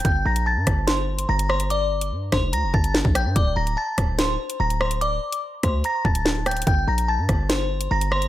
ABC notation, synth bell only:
X:1
M:4/4
L:1/8
Q:1/4=145
K:Gdor
V:1 name="Synth bell"
[gg'] [bb'] [aa']2 [cc']2 [bb'] [cc'] | [dd']2 z [cc'] [bb'] [aa']2 [gg'] | [dd'] [bb'] [aa']2 [cc']2 [bb'] [cc'] | [dd']2 z [cc'] [bb'] [aa']2 [gg'] |
[gg'] [bb'] [aa']2 [cc']2 [bb'] [cc'] |]